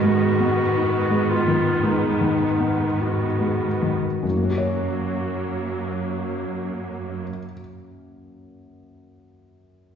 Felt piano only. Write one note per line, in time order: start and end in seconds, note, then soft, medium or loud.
0.00 1.81 G#2 soft
0.00 0.61 G#3 soft
0.40 0.97 B3 soft
0.75 1.33 D#4 soft
1.10 1.70 G#3 soft
1.48 2.08 D#3 soft
1.83 2.45 G#3 soft
2.21 2.84 D#3 soft
2.60 3.24 B3 soft
2.99 3.65 D#4 soft
3.40 4.07 G#3 soft
3.83 4.24 D#3 soft
4.23 7.23 F#2 soft
4.30 7.30 F#3 soft
4.36 7.36 A#3 soft
4.44 7.44 C#4 soft
4.51 7.51 F#4 soft
4.58 7.58 C#5 soft